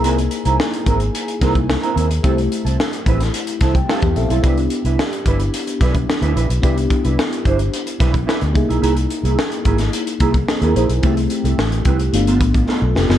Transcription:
<<
  \new Staff \with { instrumentName = "Clean electric guitar" } { \time 4/4 \key c \major \tempo 4 = 109 <c' e' bes'>16 r8 <c' e' bes'>16 r8 <c' e' bes'>16 r8. <c' e' bes'>16 r8 <c' e' bes'>16 <c' e' bes'>16 r16 | <c' e' a'>16 r8 <c' e' a'>16 r8 <c' e' b'>16 r8. <c' e' a'>16 r16 <c' e' a'>16 r8 <c' e' a'>16 | <d' e' b'>16 r8 <d' e' b'>16 r8 <d' e' b'>16 r8. <d' e' b'>16 r8 <d' e' b'>16 <d' e' b'>16 r16 | <d' e' b'>16 r8 <d' e' b'>16 r8 <d' e' c''>16 r8. <d' e' b'>16 r16 <d' e' b'>16 r8 <bes e' gis'>16 |
<bes e' gis'>16 r8 <bes e' gis'>16 r8 <bes e' gis'>16 r8. <bes e' gis'>16 r8 <bes e' gis'>16 <bes e' gis'>16 r16 | <c' e' a'>16 r8 <c' e' a'>16 r8 <c' e' b'>16 r8 <b f' a'>16 r8 <b f' a'>16 r8 <b f' a'>16 | }
  \new Staff \with { instrumentName = "FM electric piano" } { \time 4/4 \key c \major << { r1 | r2 r8 a''16 g''16 <g e' f''>16 <b g'>16 <c' a' e''>16 <e' c''>16~ | <e' c''>16 r2. r8. | r1 |
r2. <c' gis'>16 bes'16 <e' c''>16 <c' gis'>16~ | <c' gis'>16 r2. a'16 <b g'>16 <f d'>16 | } \\ { <bes dis' e' gis'>2~ <bes dis' e' gis'>8 <bes dis' e' gis'>4. | <a c' e' g'>2. r4 | <b d' e' g'>1 | <b d' e' g'>2.~ <b d' e' g'>8 <bes dis' e' gis'>8~ |
<bes dis' e' gis'>2.~ <bes dis' e' gis'>8 r8 | <a c' e' g'>2 <a b d' f'>4 r4 | } >> }
  \new Staff \with { instrumentName = "Fingered electric bass" } { \clef bass \time 4/4 \key c \major c,8 r16 c,16 r8 gis,,8 r8 c,8. r16 dis,8 | c,8 r16 c,16 r8 a,,8 r8 c,8 r16 e,16 bes,,16 b,,16 | c,8 r16 c,16 r8 g,,8 r8 b,,8 r16 d,16 bes,,16 b,,16 | c,8 r16 c,16 r8 g,,8 r8 b,,8 r16 d,16 c,16 b,,16 |
c,8 r16 c,16 r8 gis,,8 r8 c,8 r16 dis,16 bes,,16 b,,16 | c,8 r16 c,16 a,,8 c,8 g,,8 a,,8 r16 b,,16 f,,16 fis,,16 | }
  \new DrumStaff \with { instrumentName = "Drums" } \drummode { \time 4/4 hh16 hh16 hh16 hh16 sn16 hh16 <hh bd>16 hh16 hh16 hh16 <hh bd sn>16 <hh bd>16 sn16 hh16 hh16 hh16 | <hh bd>16 hh16 hh16 hh16 sn16 hh16 <hh bd>16 <hh sn>16 hh16 hh16 <hh bd sn>16 <hh bd>16 sn16 <hh bd>16 hh16 hh16 | <hh bd>16 hh16 hh16 hh16 sn16 hh16 <hh bd>16 hh16 hh16 hh16 <hh bd sn>16 <hh bd>16 sn16 hh16 hh16 hh16 | <hh bd>16 hh16 <hh bd>16 hh16 sn16 hh16 <hh bd>16 hh16 hh16 hh16 <hh bd sn>16 <hh bd>16 sn16 hh16 <hh bd>16 hh16 |
hh16 hh16 hh16 hh16 sn16 hh16 <hh bd>16 <hh sn>16 hh16 hh16 <hh bd>16 <hh bd>16 sn16 hh16 hh16 hh16 | <hh bd>16 hh16 hh16 hh16 sn16 hh16 <hh bd>16 hh16 hh16 hh16 <hh bd>16 <hh bd>16 sn8 sn16 sn16 | }
>>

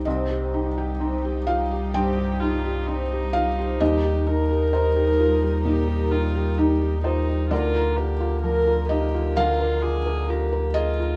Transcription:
<<
  \new Staff \with { instrumentName = "Harp" } { \time 4/4 \key c \minor \tempo 4 = 64 <c' ees' g' c''>16 c''16 g'16 g'16 c'8 g'16 g'16 c'16 g'16 ees'16 ees'16 c'8 ees'16 c''16 | ees'16 ees''16 bes'16 bes'16 ees'8 bes'16 bes'16 ees'16 bes'16 g'16 g'16 ees'8 g'16 ees''16 | bes'16 bes''16 f''16 f''16 bes'8 f''16 f''16 bes'16 f''16 d'''8 bes'8. bes''16 | }
  \new Staff \with { instrumentName = "Felt piano" } { \time 4/4 \key c \minor << { ees''4. f''8 g''4. f''8 | ees''4 c''2 r8 c''8 | d''4. ees''8 f''4. ees''8 | } \\ { c,16 g'16 ees'16 g'16 ees'16 g'16 f'16 g'16 g,16 g'16 ees'16 g'16 ees'16 g'16 f'16 g'16 | ees,16 g'16 ees'16 g'16 ees'16 g'16 f'16 g'16 bes,16 g'16 ees'16 g'16 ees'16 g'16 f'16 g'16 | d,16 f'16 bes'16 f'16 f16 f'16 ees'16 f'16 d,16 bes'16 f'16 bes'16 f'16 bes'16 aes'16 f'16 | } >> }
  \new Staff \with { instrumentName = "Viola" } { \time 4/4 \key c \minor r2 g'8 f'8 ees'4 | g'8 bes'4. g'8 f'8 g'8 ees'8 | f'8 g'8 bes'8 g'8 f'8 aes'8 g'8 f'8 | }
  \new Staff \with { instrumentName = "String section" } { \time 4/4 \key c \minor <g ees' g'>1 | <g ees' bes'>1 | <d f bes'>1 | }
  \new Staff \with { instrumentName = "Sub bass" } { \clef bass \time 4/4 \key c \minor c,1 | ees,1 | d,1 | }
>>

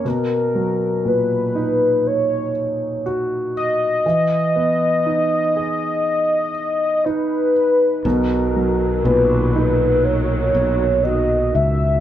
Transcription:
<<
  \new Staff \with { instrumentName = "Soft synth lead" } { \time 4/4 \key b \major \tempo 4 = 60 ais'4 b'4 cis''4 r8 dis''8~ | dis''2. b'4 | ais'4 b'4 cis''4 dis''8 e''8 | }
  \new Staff \with { instrumentName = "Grand piano" } { \time 4/4 \key b \major b,8 fis8 ais,8 dis'4. fis'4 | e8 b8 dis'8 gis'4. dis'4 | b,8 fis8 ais,8 dis'4. fis'4 | }
  \new Staff \with { instrumentName = "String section" } { \clef bass \time 4/4 \key b \major r1 | r1 | <dis fis>1 | }
  \new Staff \with { instrumentName = "Fretless electric bass" } { \clef bass \time 4/4 \key b \major r1 | r1 | b,,4 b,,4. b,,4 cis,8 | }
>>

